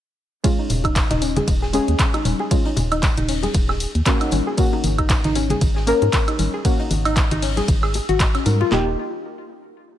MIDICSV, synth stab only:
0, 0, Header, 1, 2, 480
1, 0, Start_track
1, 0, Tempo, 517241
1, 409, Time_signature, 4, 2, 24, 8
1, 9262, End_track
2, 0, Start_track
2, 0, Title_t, "Synth stab"
2, 0, Program_c, 0, 62
2, 404, Note_on_c, 0, 56, 84
2, 410, Note_on_c, 0, 61, 77
2, 416, Note_on_c, 0, 65, 93
2, 1582, Note_off_c, 0, 56, 0
2, 1585, Note_off_c, 0, 61, 0
2, 1588, Note_off_c, 0, 65, 0
2, 1603, Note_on_c, 0, 56, 93
2, 1609, Note_on_c, 0, 61, 81
2, 1615, Note_on_c, 0, 68, 99
2, 2302, Note_off_c, 0, 56, 0
2, 2304, Note_off_c, 0, 61, 0
2, 2307, Note_off_c, 0, 68, 0
2, 2327, Note_on_c, 0, 56, 84
2, 2330, Note_on_c, 0, 61, 73
2, 2333, Note_on_c, 0, 65, 88
2, 2496, Note_off_c, 0, 56, 0
2, 2498, Note_off_c, 0, 61, 0
2, 2499, Note_off_c, 0, 65, 0
2, 3767, Note_on_c, 0, 58, 99
2, 3770, Note_on_c, 0, 61, 92
2, 3773, Note_on_c, 0, 66, 112
2, 4223, Note_off_c, 0, 58, 0
2, 4225, Note_off_c, 0, 61, 0
2, 4226, Note_off_c, 0, 66, 0
2, 4242, Note_on_c, 0, 58, 89
2, 4249, Note_on_c, 0, 61, 75
2, 4255, Note_on_c, 0, 66, 94
2, 5421, Note_off_c, 0, 58, 0
2, 5424, Note_off_c, 0, 61, 0
2, 5427, Note_off_c, 0, 66, 0
2, 5443, Note_on_c, 0, 58, 86
2, 5450, Note_on_c, 0, 61, 80
2, 5456, Note_on_c, 0, 70, 99
2, 6142, Note_off_c, 0, 58, 0
2, 6145, Note_off_c, 0, 61, 0
2, 6148, Note_off_c, 0, 70, 0
2, 6167, Note_on_c, 0, 58, 84
2, 6170, Note_on_c, 0, 61, 75
2, 6173, Note_on_c, 0, 66, 91
2, 6336, Note_off_c, 0, 58, 0
2, 6337, Note_off_c, 0, 61, 0
2, 6339, Note_off_c, 0, 66, 0
2, 8081, Note_on_c, 0, 58, 91
2, 8090, Note_on_c, 0, 63, 78
2, 8099, Note_on_c, 0, 67, 96
2, 8270, Note_off_c, 0, 58, 0
2, 8274, Note_off_c, 0, 63, 0
2, 8279, Note_off_c, 0, 67, 0
2, 9262, End_track
0, 0, End_of_file